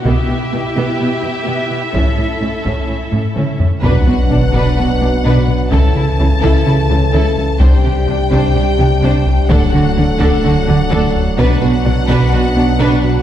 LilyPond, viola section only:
\new Staff \with { instrumentName = "Viola section" } { \time 4/4 \key b \minor \tempo 4 = 127 << { e'1~ | e'2.~ e'8 r8 | r1 | r1 |
r1 | r1 | r1 | } \\ { b8 b8 b8 b8 b8 b8 b8 b8 | cis'8 cis'8 cis'8 cis'8 cis'8 cis'8 cis'8 cis'8 | d'8 d'8 d'8 d'8 d'8 d'8 d'8 r8 | e'8 e'8 e'8 e'8 e'8 e'8 e'8 r8 |
d'8 d'8 d'8 d'8 d'8 d'8 d'8 r8 | d'8 d'8 d'8 d'8 d'8 d'8 d'8 r8 | d'8 d'8 d'8 d'8 d'8 d'8 d'8 r8 | } >> }